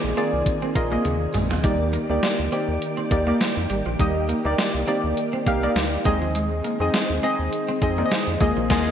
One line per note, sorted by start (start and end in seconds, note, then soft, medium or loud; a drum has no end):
0.00 0.14 A#1 medium
0.00 8.37 D#3 medium
0.00 0.17 A#3 medium
0.00 6.02 A#3 medium
0.00 1.62 C4 medium
0.00 0.17 F4 medium
0.00 0.17 G#4 medium
0.00 1.62 G#4 medium
0.00 0.18 D5 medium
0.00 0.76 D#5 loud
0.17 0.55 A#3 medium
0.17 0.28 C4 medium
0.17 0.55 F4 medium
0.17 0.56 G#4 medium
0.17 0.56 D5 medium
0.17 closed hi-hat medium
0.33 0.43 C2 medium
0.46 kick medium
0.46 closed hi-hat medium
0.62 0.71 C4 medium
0.75 0.98 A#1 loud
0.75 0.86 A#3 medium
0.75 0.86 F4 medium
0.75 0.86 G#4 medium
0.75 0.87 D#5 medium
0.75 muted clean electric guitar stroke soft
0.75 kick medium
0.75 closed hi-hat medium
0.91 1.38 A#3 medium
0.91 1.01 A#3 medium
0.91 1.38 F4 medium
0.91 1.38 G#4 medium
0.91 1.38 D#5 medium
1.05 1.27 D#2 loud
1.05 muted clean electric guitar stroke soft
1.05 closed hi-hat medium
1.05 high tom medium
1.34 1.57 A#1 medium
1.34 1.45 G#3 medium
1.34 closed hi-hat medium
1.34 mid tom medium
1.50 1.60 F3 medium
1.50 floor tom medium
1.64 1.98 D#2 loud
1.64 1.75 G3 medium
1.64 1.92 A#3 medium
1.64 1.92 D#4 medium
1.64 6.02 G4 medium
1.64 1.93 G4 medium
1.64 6.02 D5 medium
1.64 1.93 D5 medium
1.64 kick loud
1.64 closed hi-hat loud
1.93 2.04 A#3 medium
1.93 closed hi-hat medium
2.10 2.20 D2 medium
2.10 2.38 A#3 medium
2.10 2.38 D#4 medium
2.10 2.38 G4 medium
2.10 2.38 D5 medium
2.10 muted clean electric guitar stroke soft
2.23 snare loud
2.23 closed hi-hat medium
2.23 tambourine medium
2.39 2.49 D2 medium
2.52 2.91 A#3 medium
2.52 2.63 C4 medium
2.52 2.91 D#4 medium
2.52 2.91 G4 medium
2.52 2.91 D5 medium
2.52 closed hi-hat medium
2.68 2.78 D#2 medium
2.82 closed hi-hat medium
2.97 3.06 C4 medium
3.11 3.33 D#2 loud
3.11 3.21 A#3 medium
3.11 3.22 D#4 medium
3.11 3.22 G4 medium
3.11 3.22 D5 medium
3.11 muted clean electric guitar stroke soft
3.11 kick medium
3.11 closed hi-hat medium
3.27 3.36 A#3 medium
3.27 3.73 A#3 medium
3.27 3.73 D#4 medium
3.27 3.73 G4 medium
3.27 3.74 D5 medium
3.40 muted clean electric guitar stroke soft
3.40 snare loud
3.40 closed hi-hat medium
3.40 tambourine medium
3.57 3.67 F2 loud
3.70 3.82 G#1 medium
3.70 3.81 G3 medium
3.70 closed hi-hat medium
3.86 3.96 A#1 medium
3.86 3.95 F3 medium
3.99 4.34 D#2 loud
3.99 4.10 G3 medium
3.99 4.28 A#3 medium
3.99 4.28 D#4 medium
3.99 4.28 G4 medium
3.99 4.28 D#5 medium
3.99 kick loud
3.99 closed hi-hat loud
4.29 4.40 A#3 medium
4.29 closed hi-hat medium
4.45 4.55 D2 medium
4.45 4.73 A#3 medium
4.45 4.73 D#4 medium
4.45 4.73 G4 medium
4.45 4.74 D5 medium
4.45 muted clean electric guitar stroke soft
4.58 snare loud
4.58 closed hi-hat medium
4.58 tambourine medium
4.74 4.84 C2 medium
4.87 5.26 A#3 medium
4.87 4.99 C4 medium
4.87 5.26 D#4 medium
4.87 5.26 G4 medium
4.87 5.26 D5 medium
4.87 closed hi-hat medium
5.04 5.14 D2 medium
5.17 closed hi-hat medium
5.33 5.42 C4 medium
5.47 5.69 C2 loud
5.47 5.57 A#3 medium
5.47 5.57 D#4 medium
5.47 5.57 G4 medium
5.47 5.57 F5 medium
5.47 muted clean electric guitar stroke soft
5.47 kick medium
5.47 closed hi-hat medium
5.62 6.05 A#3 medium
5.62 5.72 A#3 medium
5.62 6.04 D#4 medium
5.62 6.06 G4 medium
5.62 6.06 D5 medium
5.76 5.98 D2 loud
5.76 muted clean electric guitar stroke soft
5.76 snare loud
5.76 closed hi-hat medium
5.76 tambourine medium
6.05 6.62 D#2 loud
6.05 6.16 G#3 medium
6.05 8.39 G#3 medium
6.05 6.64 C4 medium
6.05 8.91 C4 medium
6.05 6.64 D#4 medium
6.05 6.65 G#4 medium
6.05 6.65 D#5 loud
6.05 kick loud
6.05 closed hi-hat medium
6.22 6.31 F3 medium
6.35 6.46 G#3 medium
6.35 closed hi-hat medium
6.64 6.75 A#3 medium
6.64 closed hi-hat medium
6.80 6.90 F2 loud
6.80 7.08 C4 medium
6.80 7.09 D#4 medium
6.80 7.09 G#4 medium
6.80 7.09 D#5 medium
6.80 muted clean electric guitar stroke soft
6.94 snare loud
6.94 closed hi-hat medium
6.94 tambourine medium
7.10 7.20 D#2 medium
7.23 7.61 C4 medium
7.23 7.34 C4 medium
7.23 7.61 D#4 medium
7.23 7.62 G#4 medium
7.23 7.62 D#5 loud
7.23 closed hi-hat medium
7.39 7.49 D#2 medium
7.53 closed hi-hat medium
7.69 7.78 C4 medium
7.82 8.04 F2 medium
7.82 7.92 C4 medium
7.82 7.92 D#4 medium
7.82 7.93 G#4 medium
7.82 7.93 D#5 medium
7.82 muted clean electric guitar stroke soft
7.82 kick medium
7.82 closed hi-hat medium
7.98 8.07 A#3 medium
7.98 8.41 C4 medium
7.98 8.41 D#4 medium
7.98 8.40 G#4 medium
7.98 8.04 D5 medium
8.06 8.40 D#5 medium
8.11 muted clean electric guitar stroke soft
8.11 snare loud
8.11 closed hi-hat medium
8.11 tambourine medium
8.27 8.37 F2 medium
8.40 8.53 D#2 loud
8.40 8.91 D#3 medium
8.40 8.52 G#3 medium
8.40 8.91 A#3 medium
8.40 8.69 A#3 medium
8.40 8.69 F4 medium
8.40 8.91 G#4 medium
8.40 8.70 G#4 medium
8.40 8.70 D#5 medium
8.40 kick loud
8.40 closed hi-hat medium
8.57 8.70 A#1 medium
8.57 8.66 F3 medium
8.70 8.91 D#2 loud
8.70 8.91 A#3 loud
8.70 8.91 F4 loud
8.70 8.91 G#4 loud
8.70 8.91 D#5 loud
8.70 kick loud
8.70 snare loud
8.70 crash medium